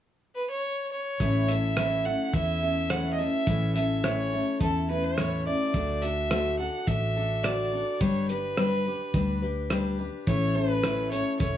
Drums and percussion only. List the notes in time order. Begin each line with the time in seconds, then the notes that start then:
1.20 kick, closed hi-hat
1.49 closed hi-hat
1.77 cross-stick, closed hi-hat
2.34 kick, closed hi-hat
2.90 cross-stick, closed hi-hat
3.47 kick, closed hi-hat
3.76 closed hi-hat
4.04 cross-stick, closed hi-hat
4.61 kick, closed hi-hat
5.18 cross-stick, closed hi-hat
5.74 kick, closed hi-hat
6.03 closed hi-hat
6.31 cross-stick, closed hi-hat
6.87 kick, closed hi-hat
7.44 cross-stick, closed hi-hat
8.01 kick, closed hi-hat
8.29 closed hi-hat
8.57 cross-stick, closed hi-hat
9.14 kick, closed hi-hat
9.70 cross-stick, closed hi-hat
10.27 kick, closed hi-hat
10.84 cross-stick, closed hi-hat
11.12 closed hi-hat
11.40 kick, closed hi-hat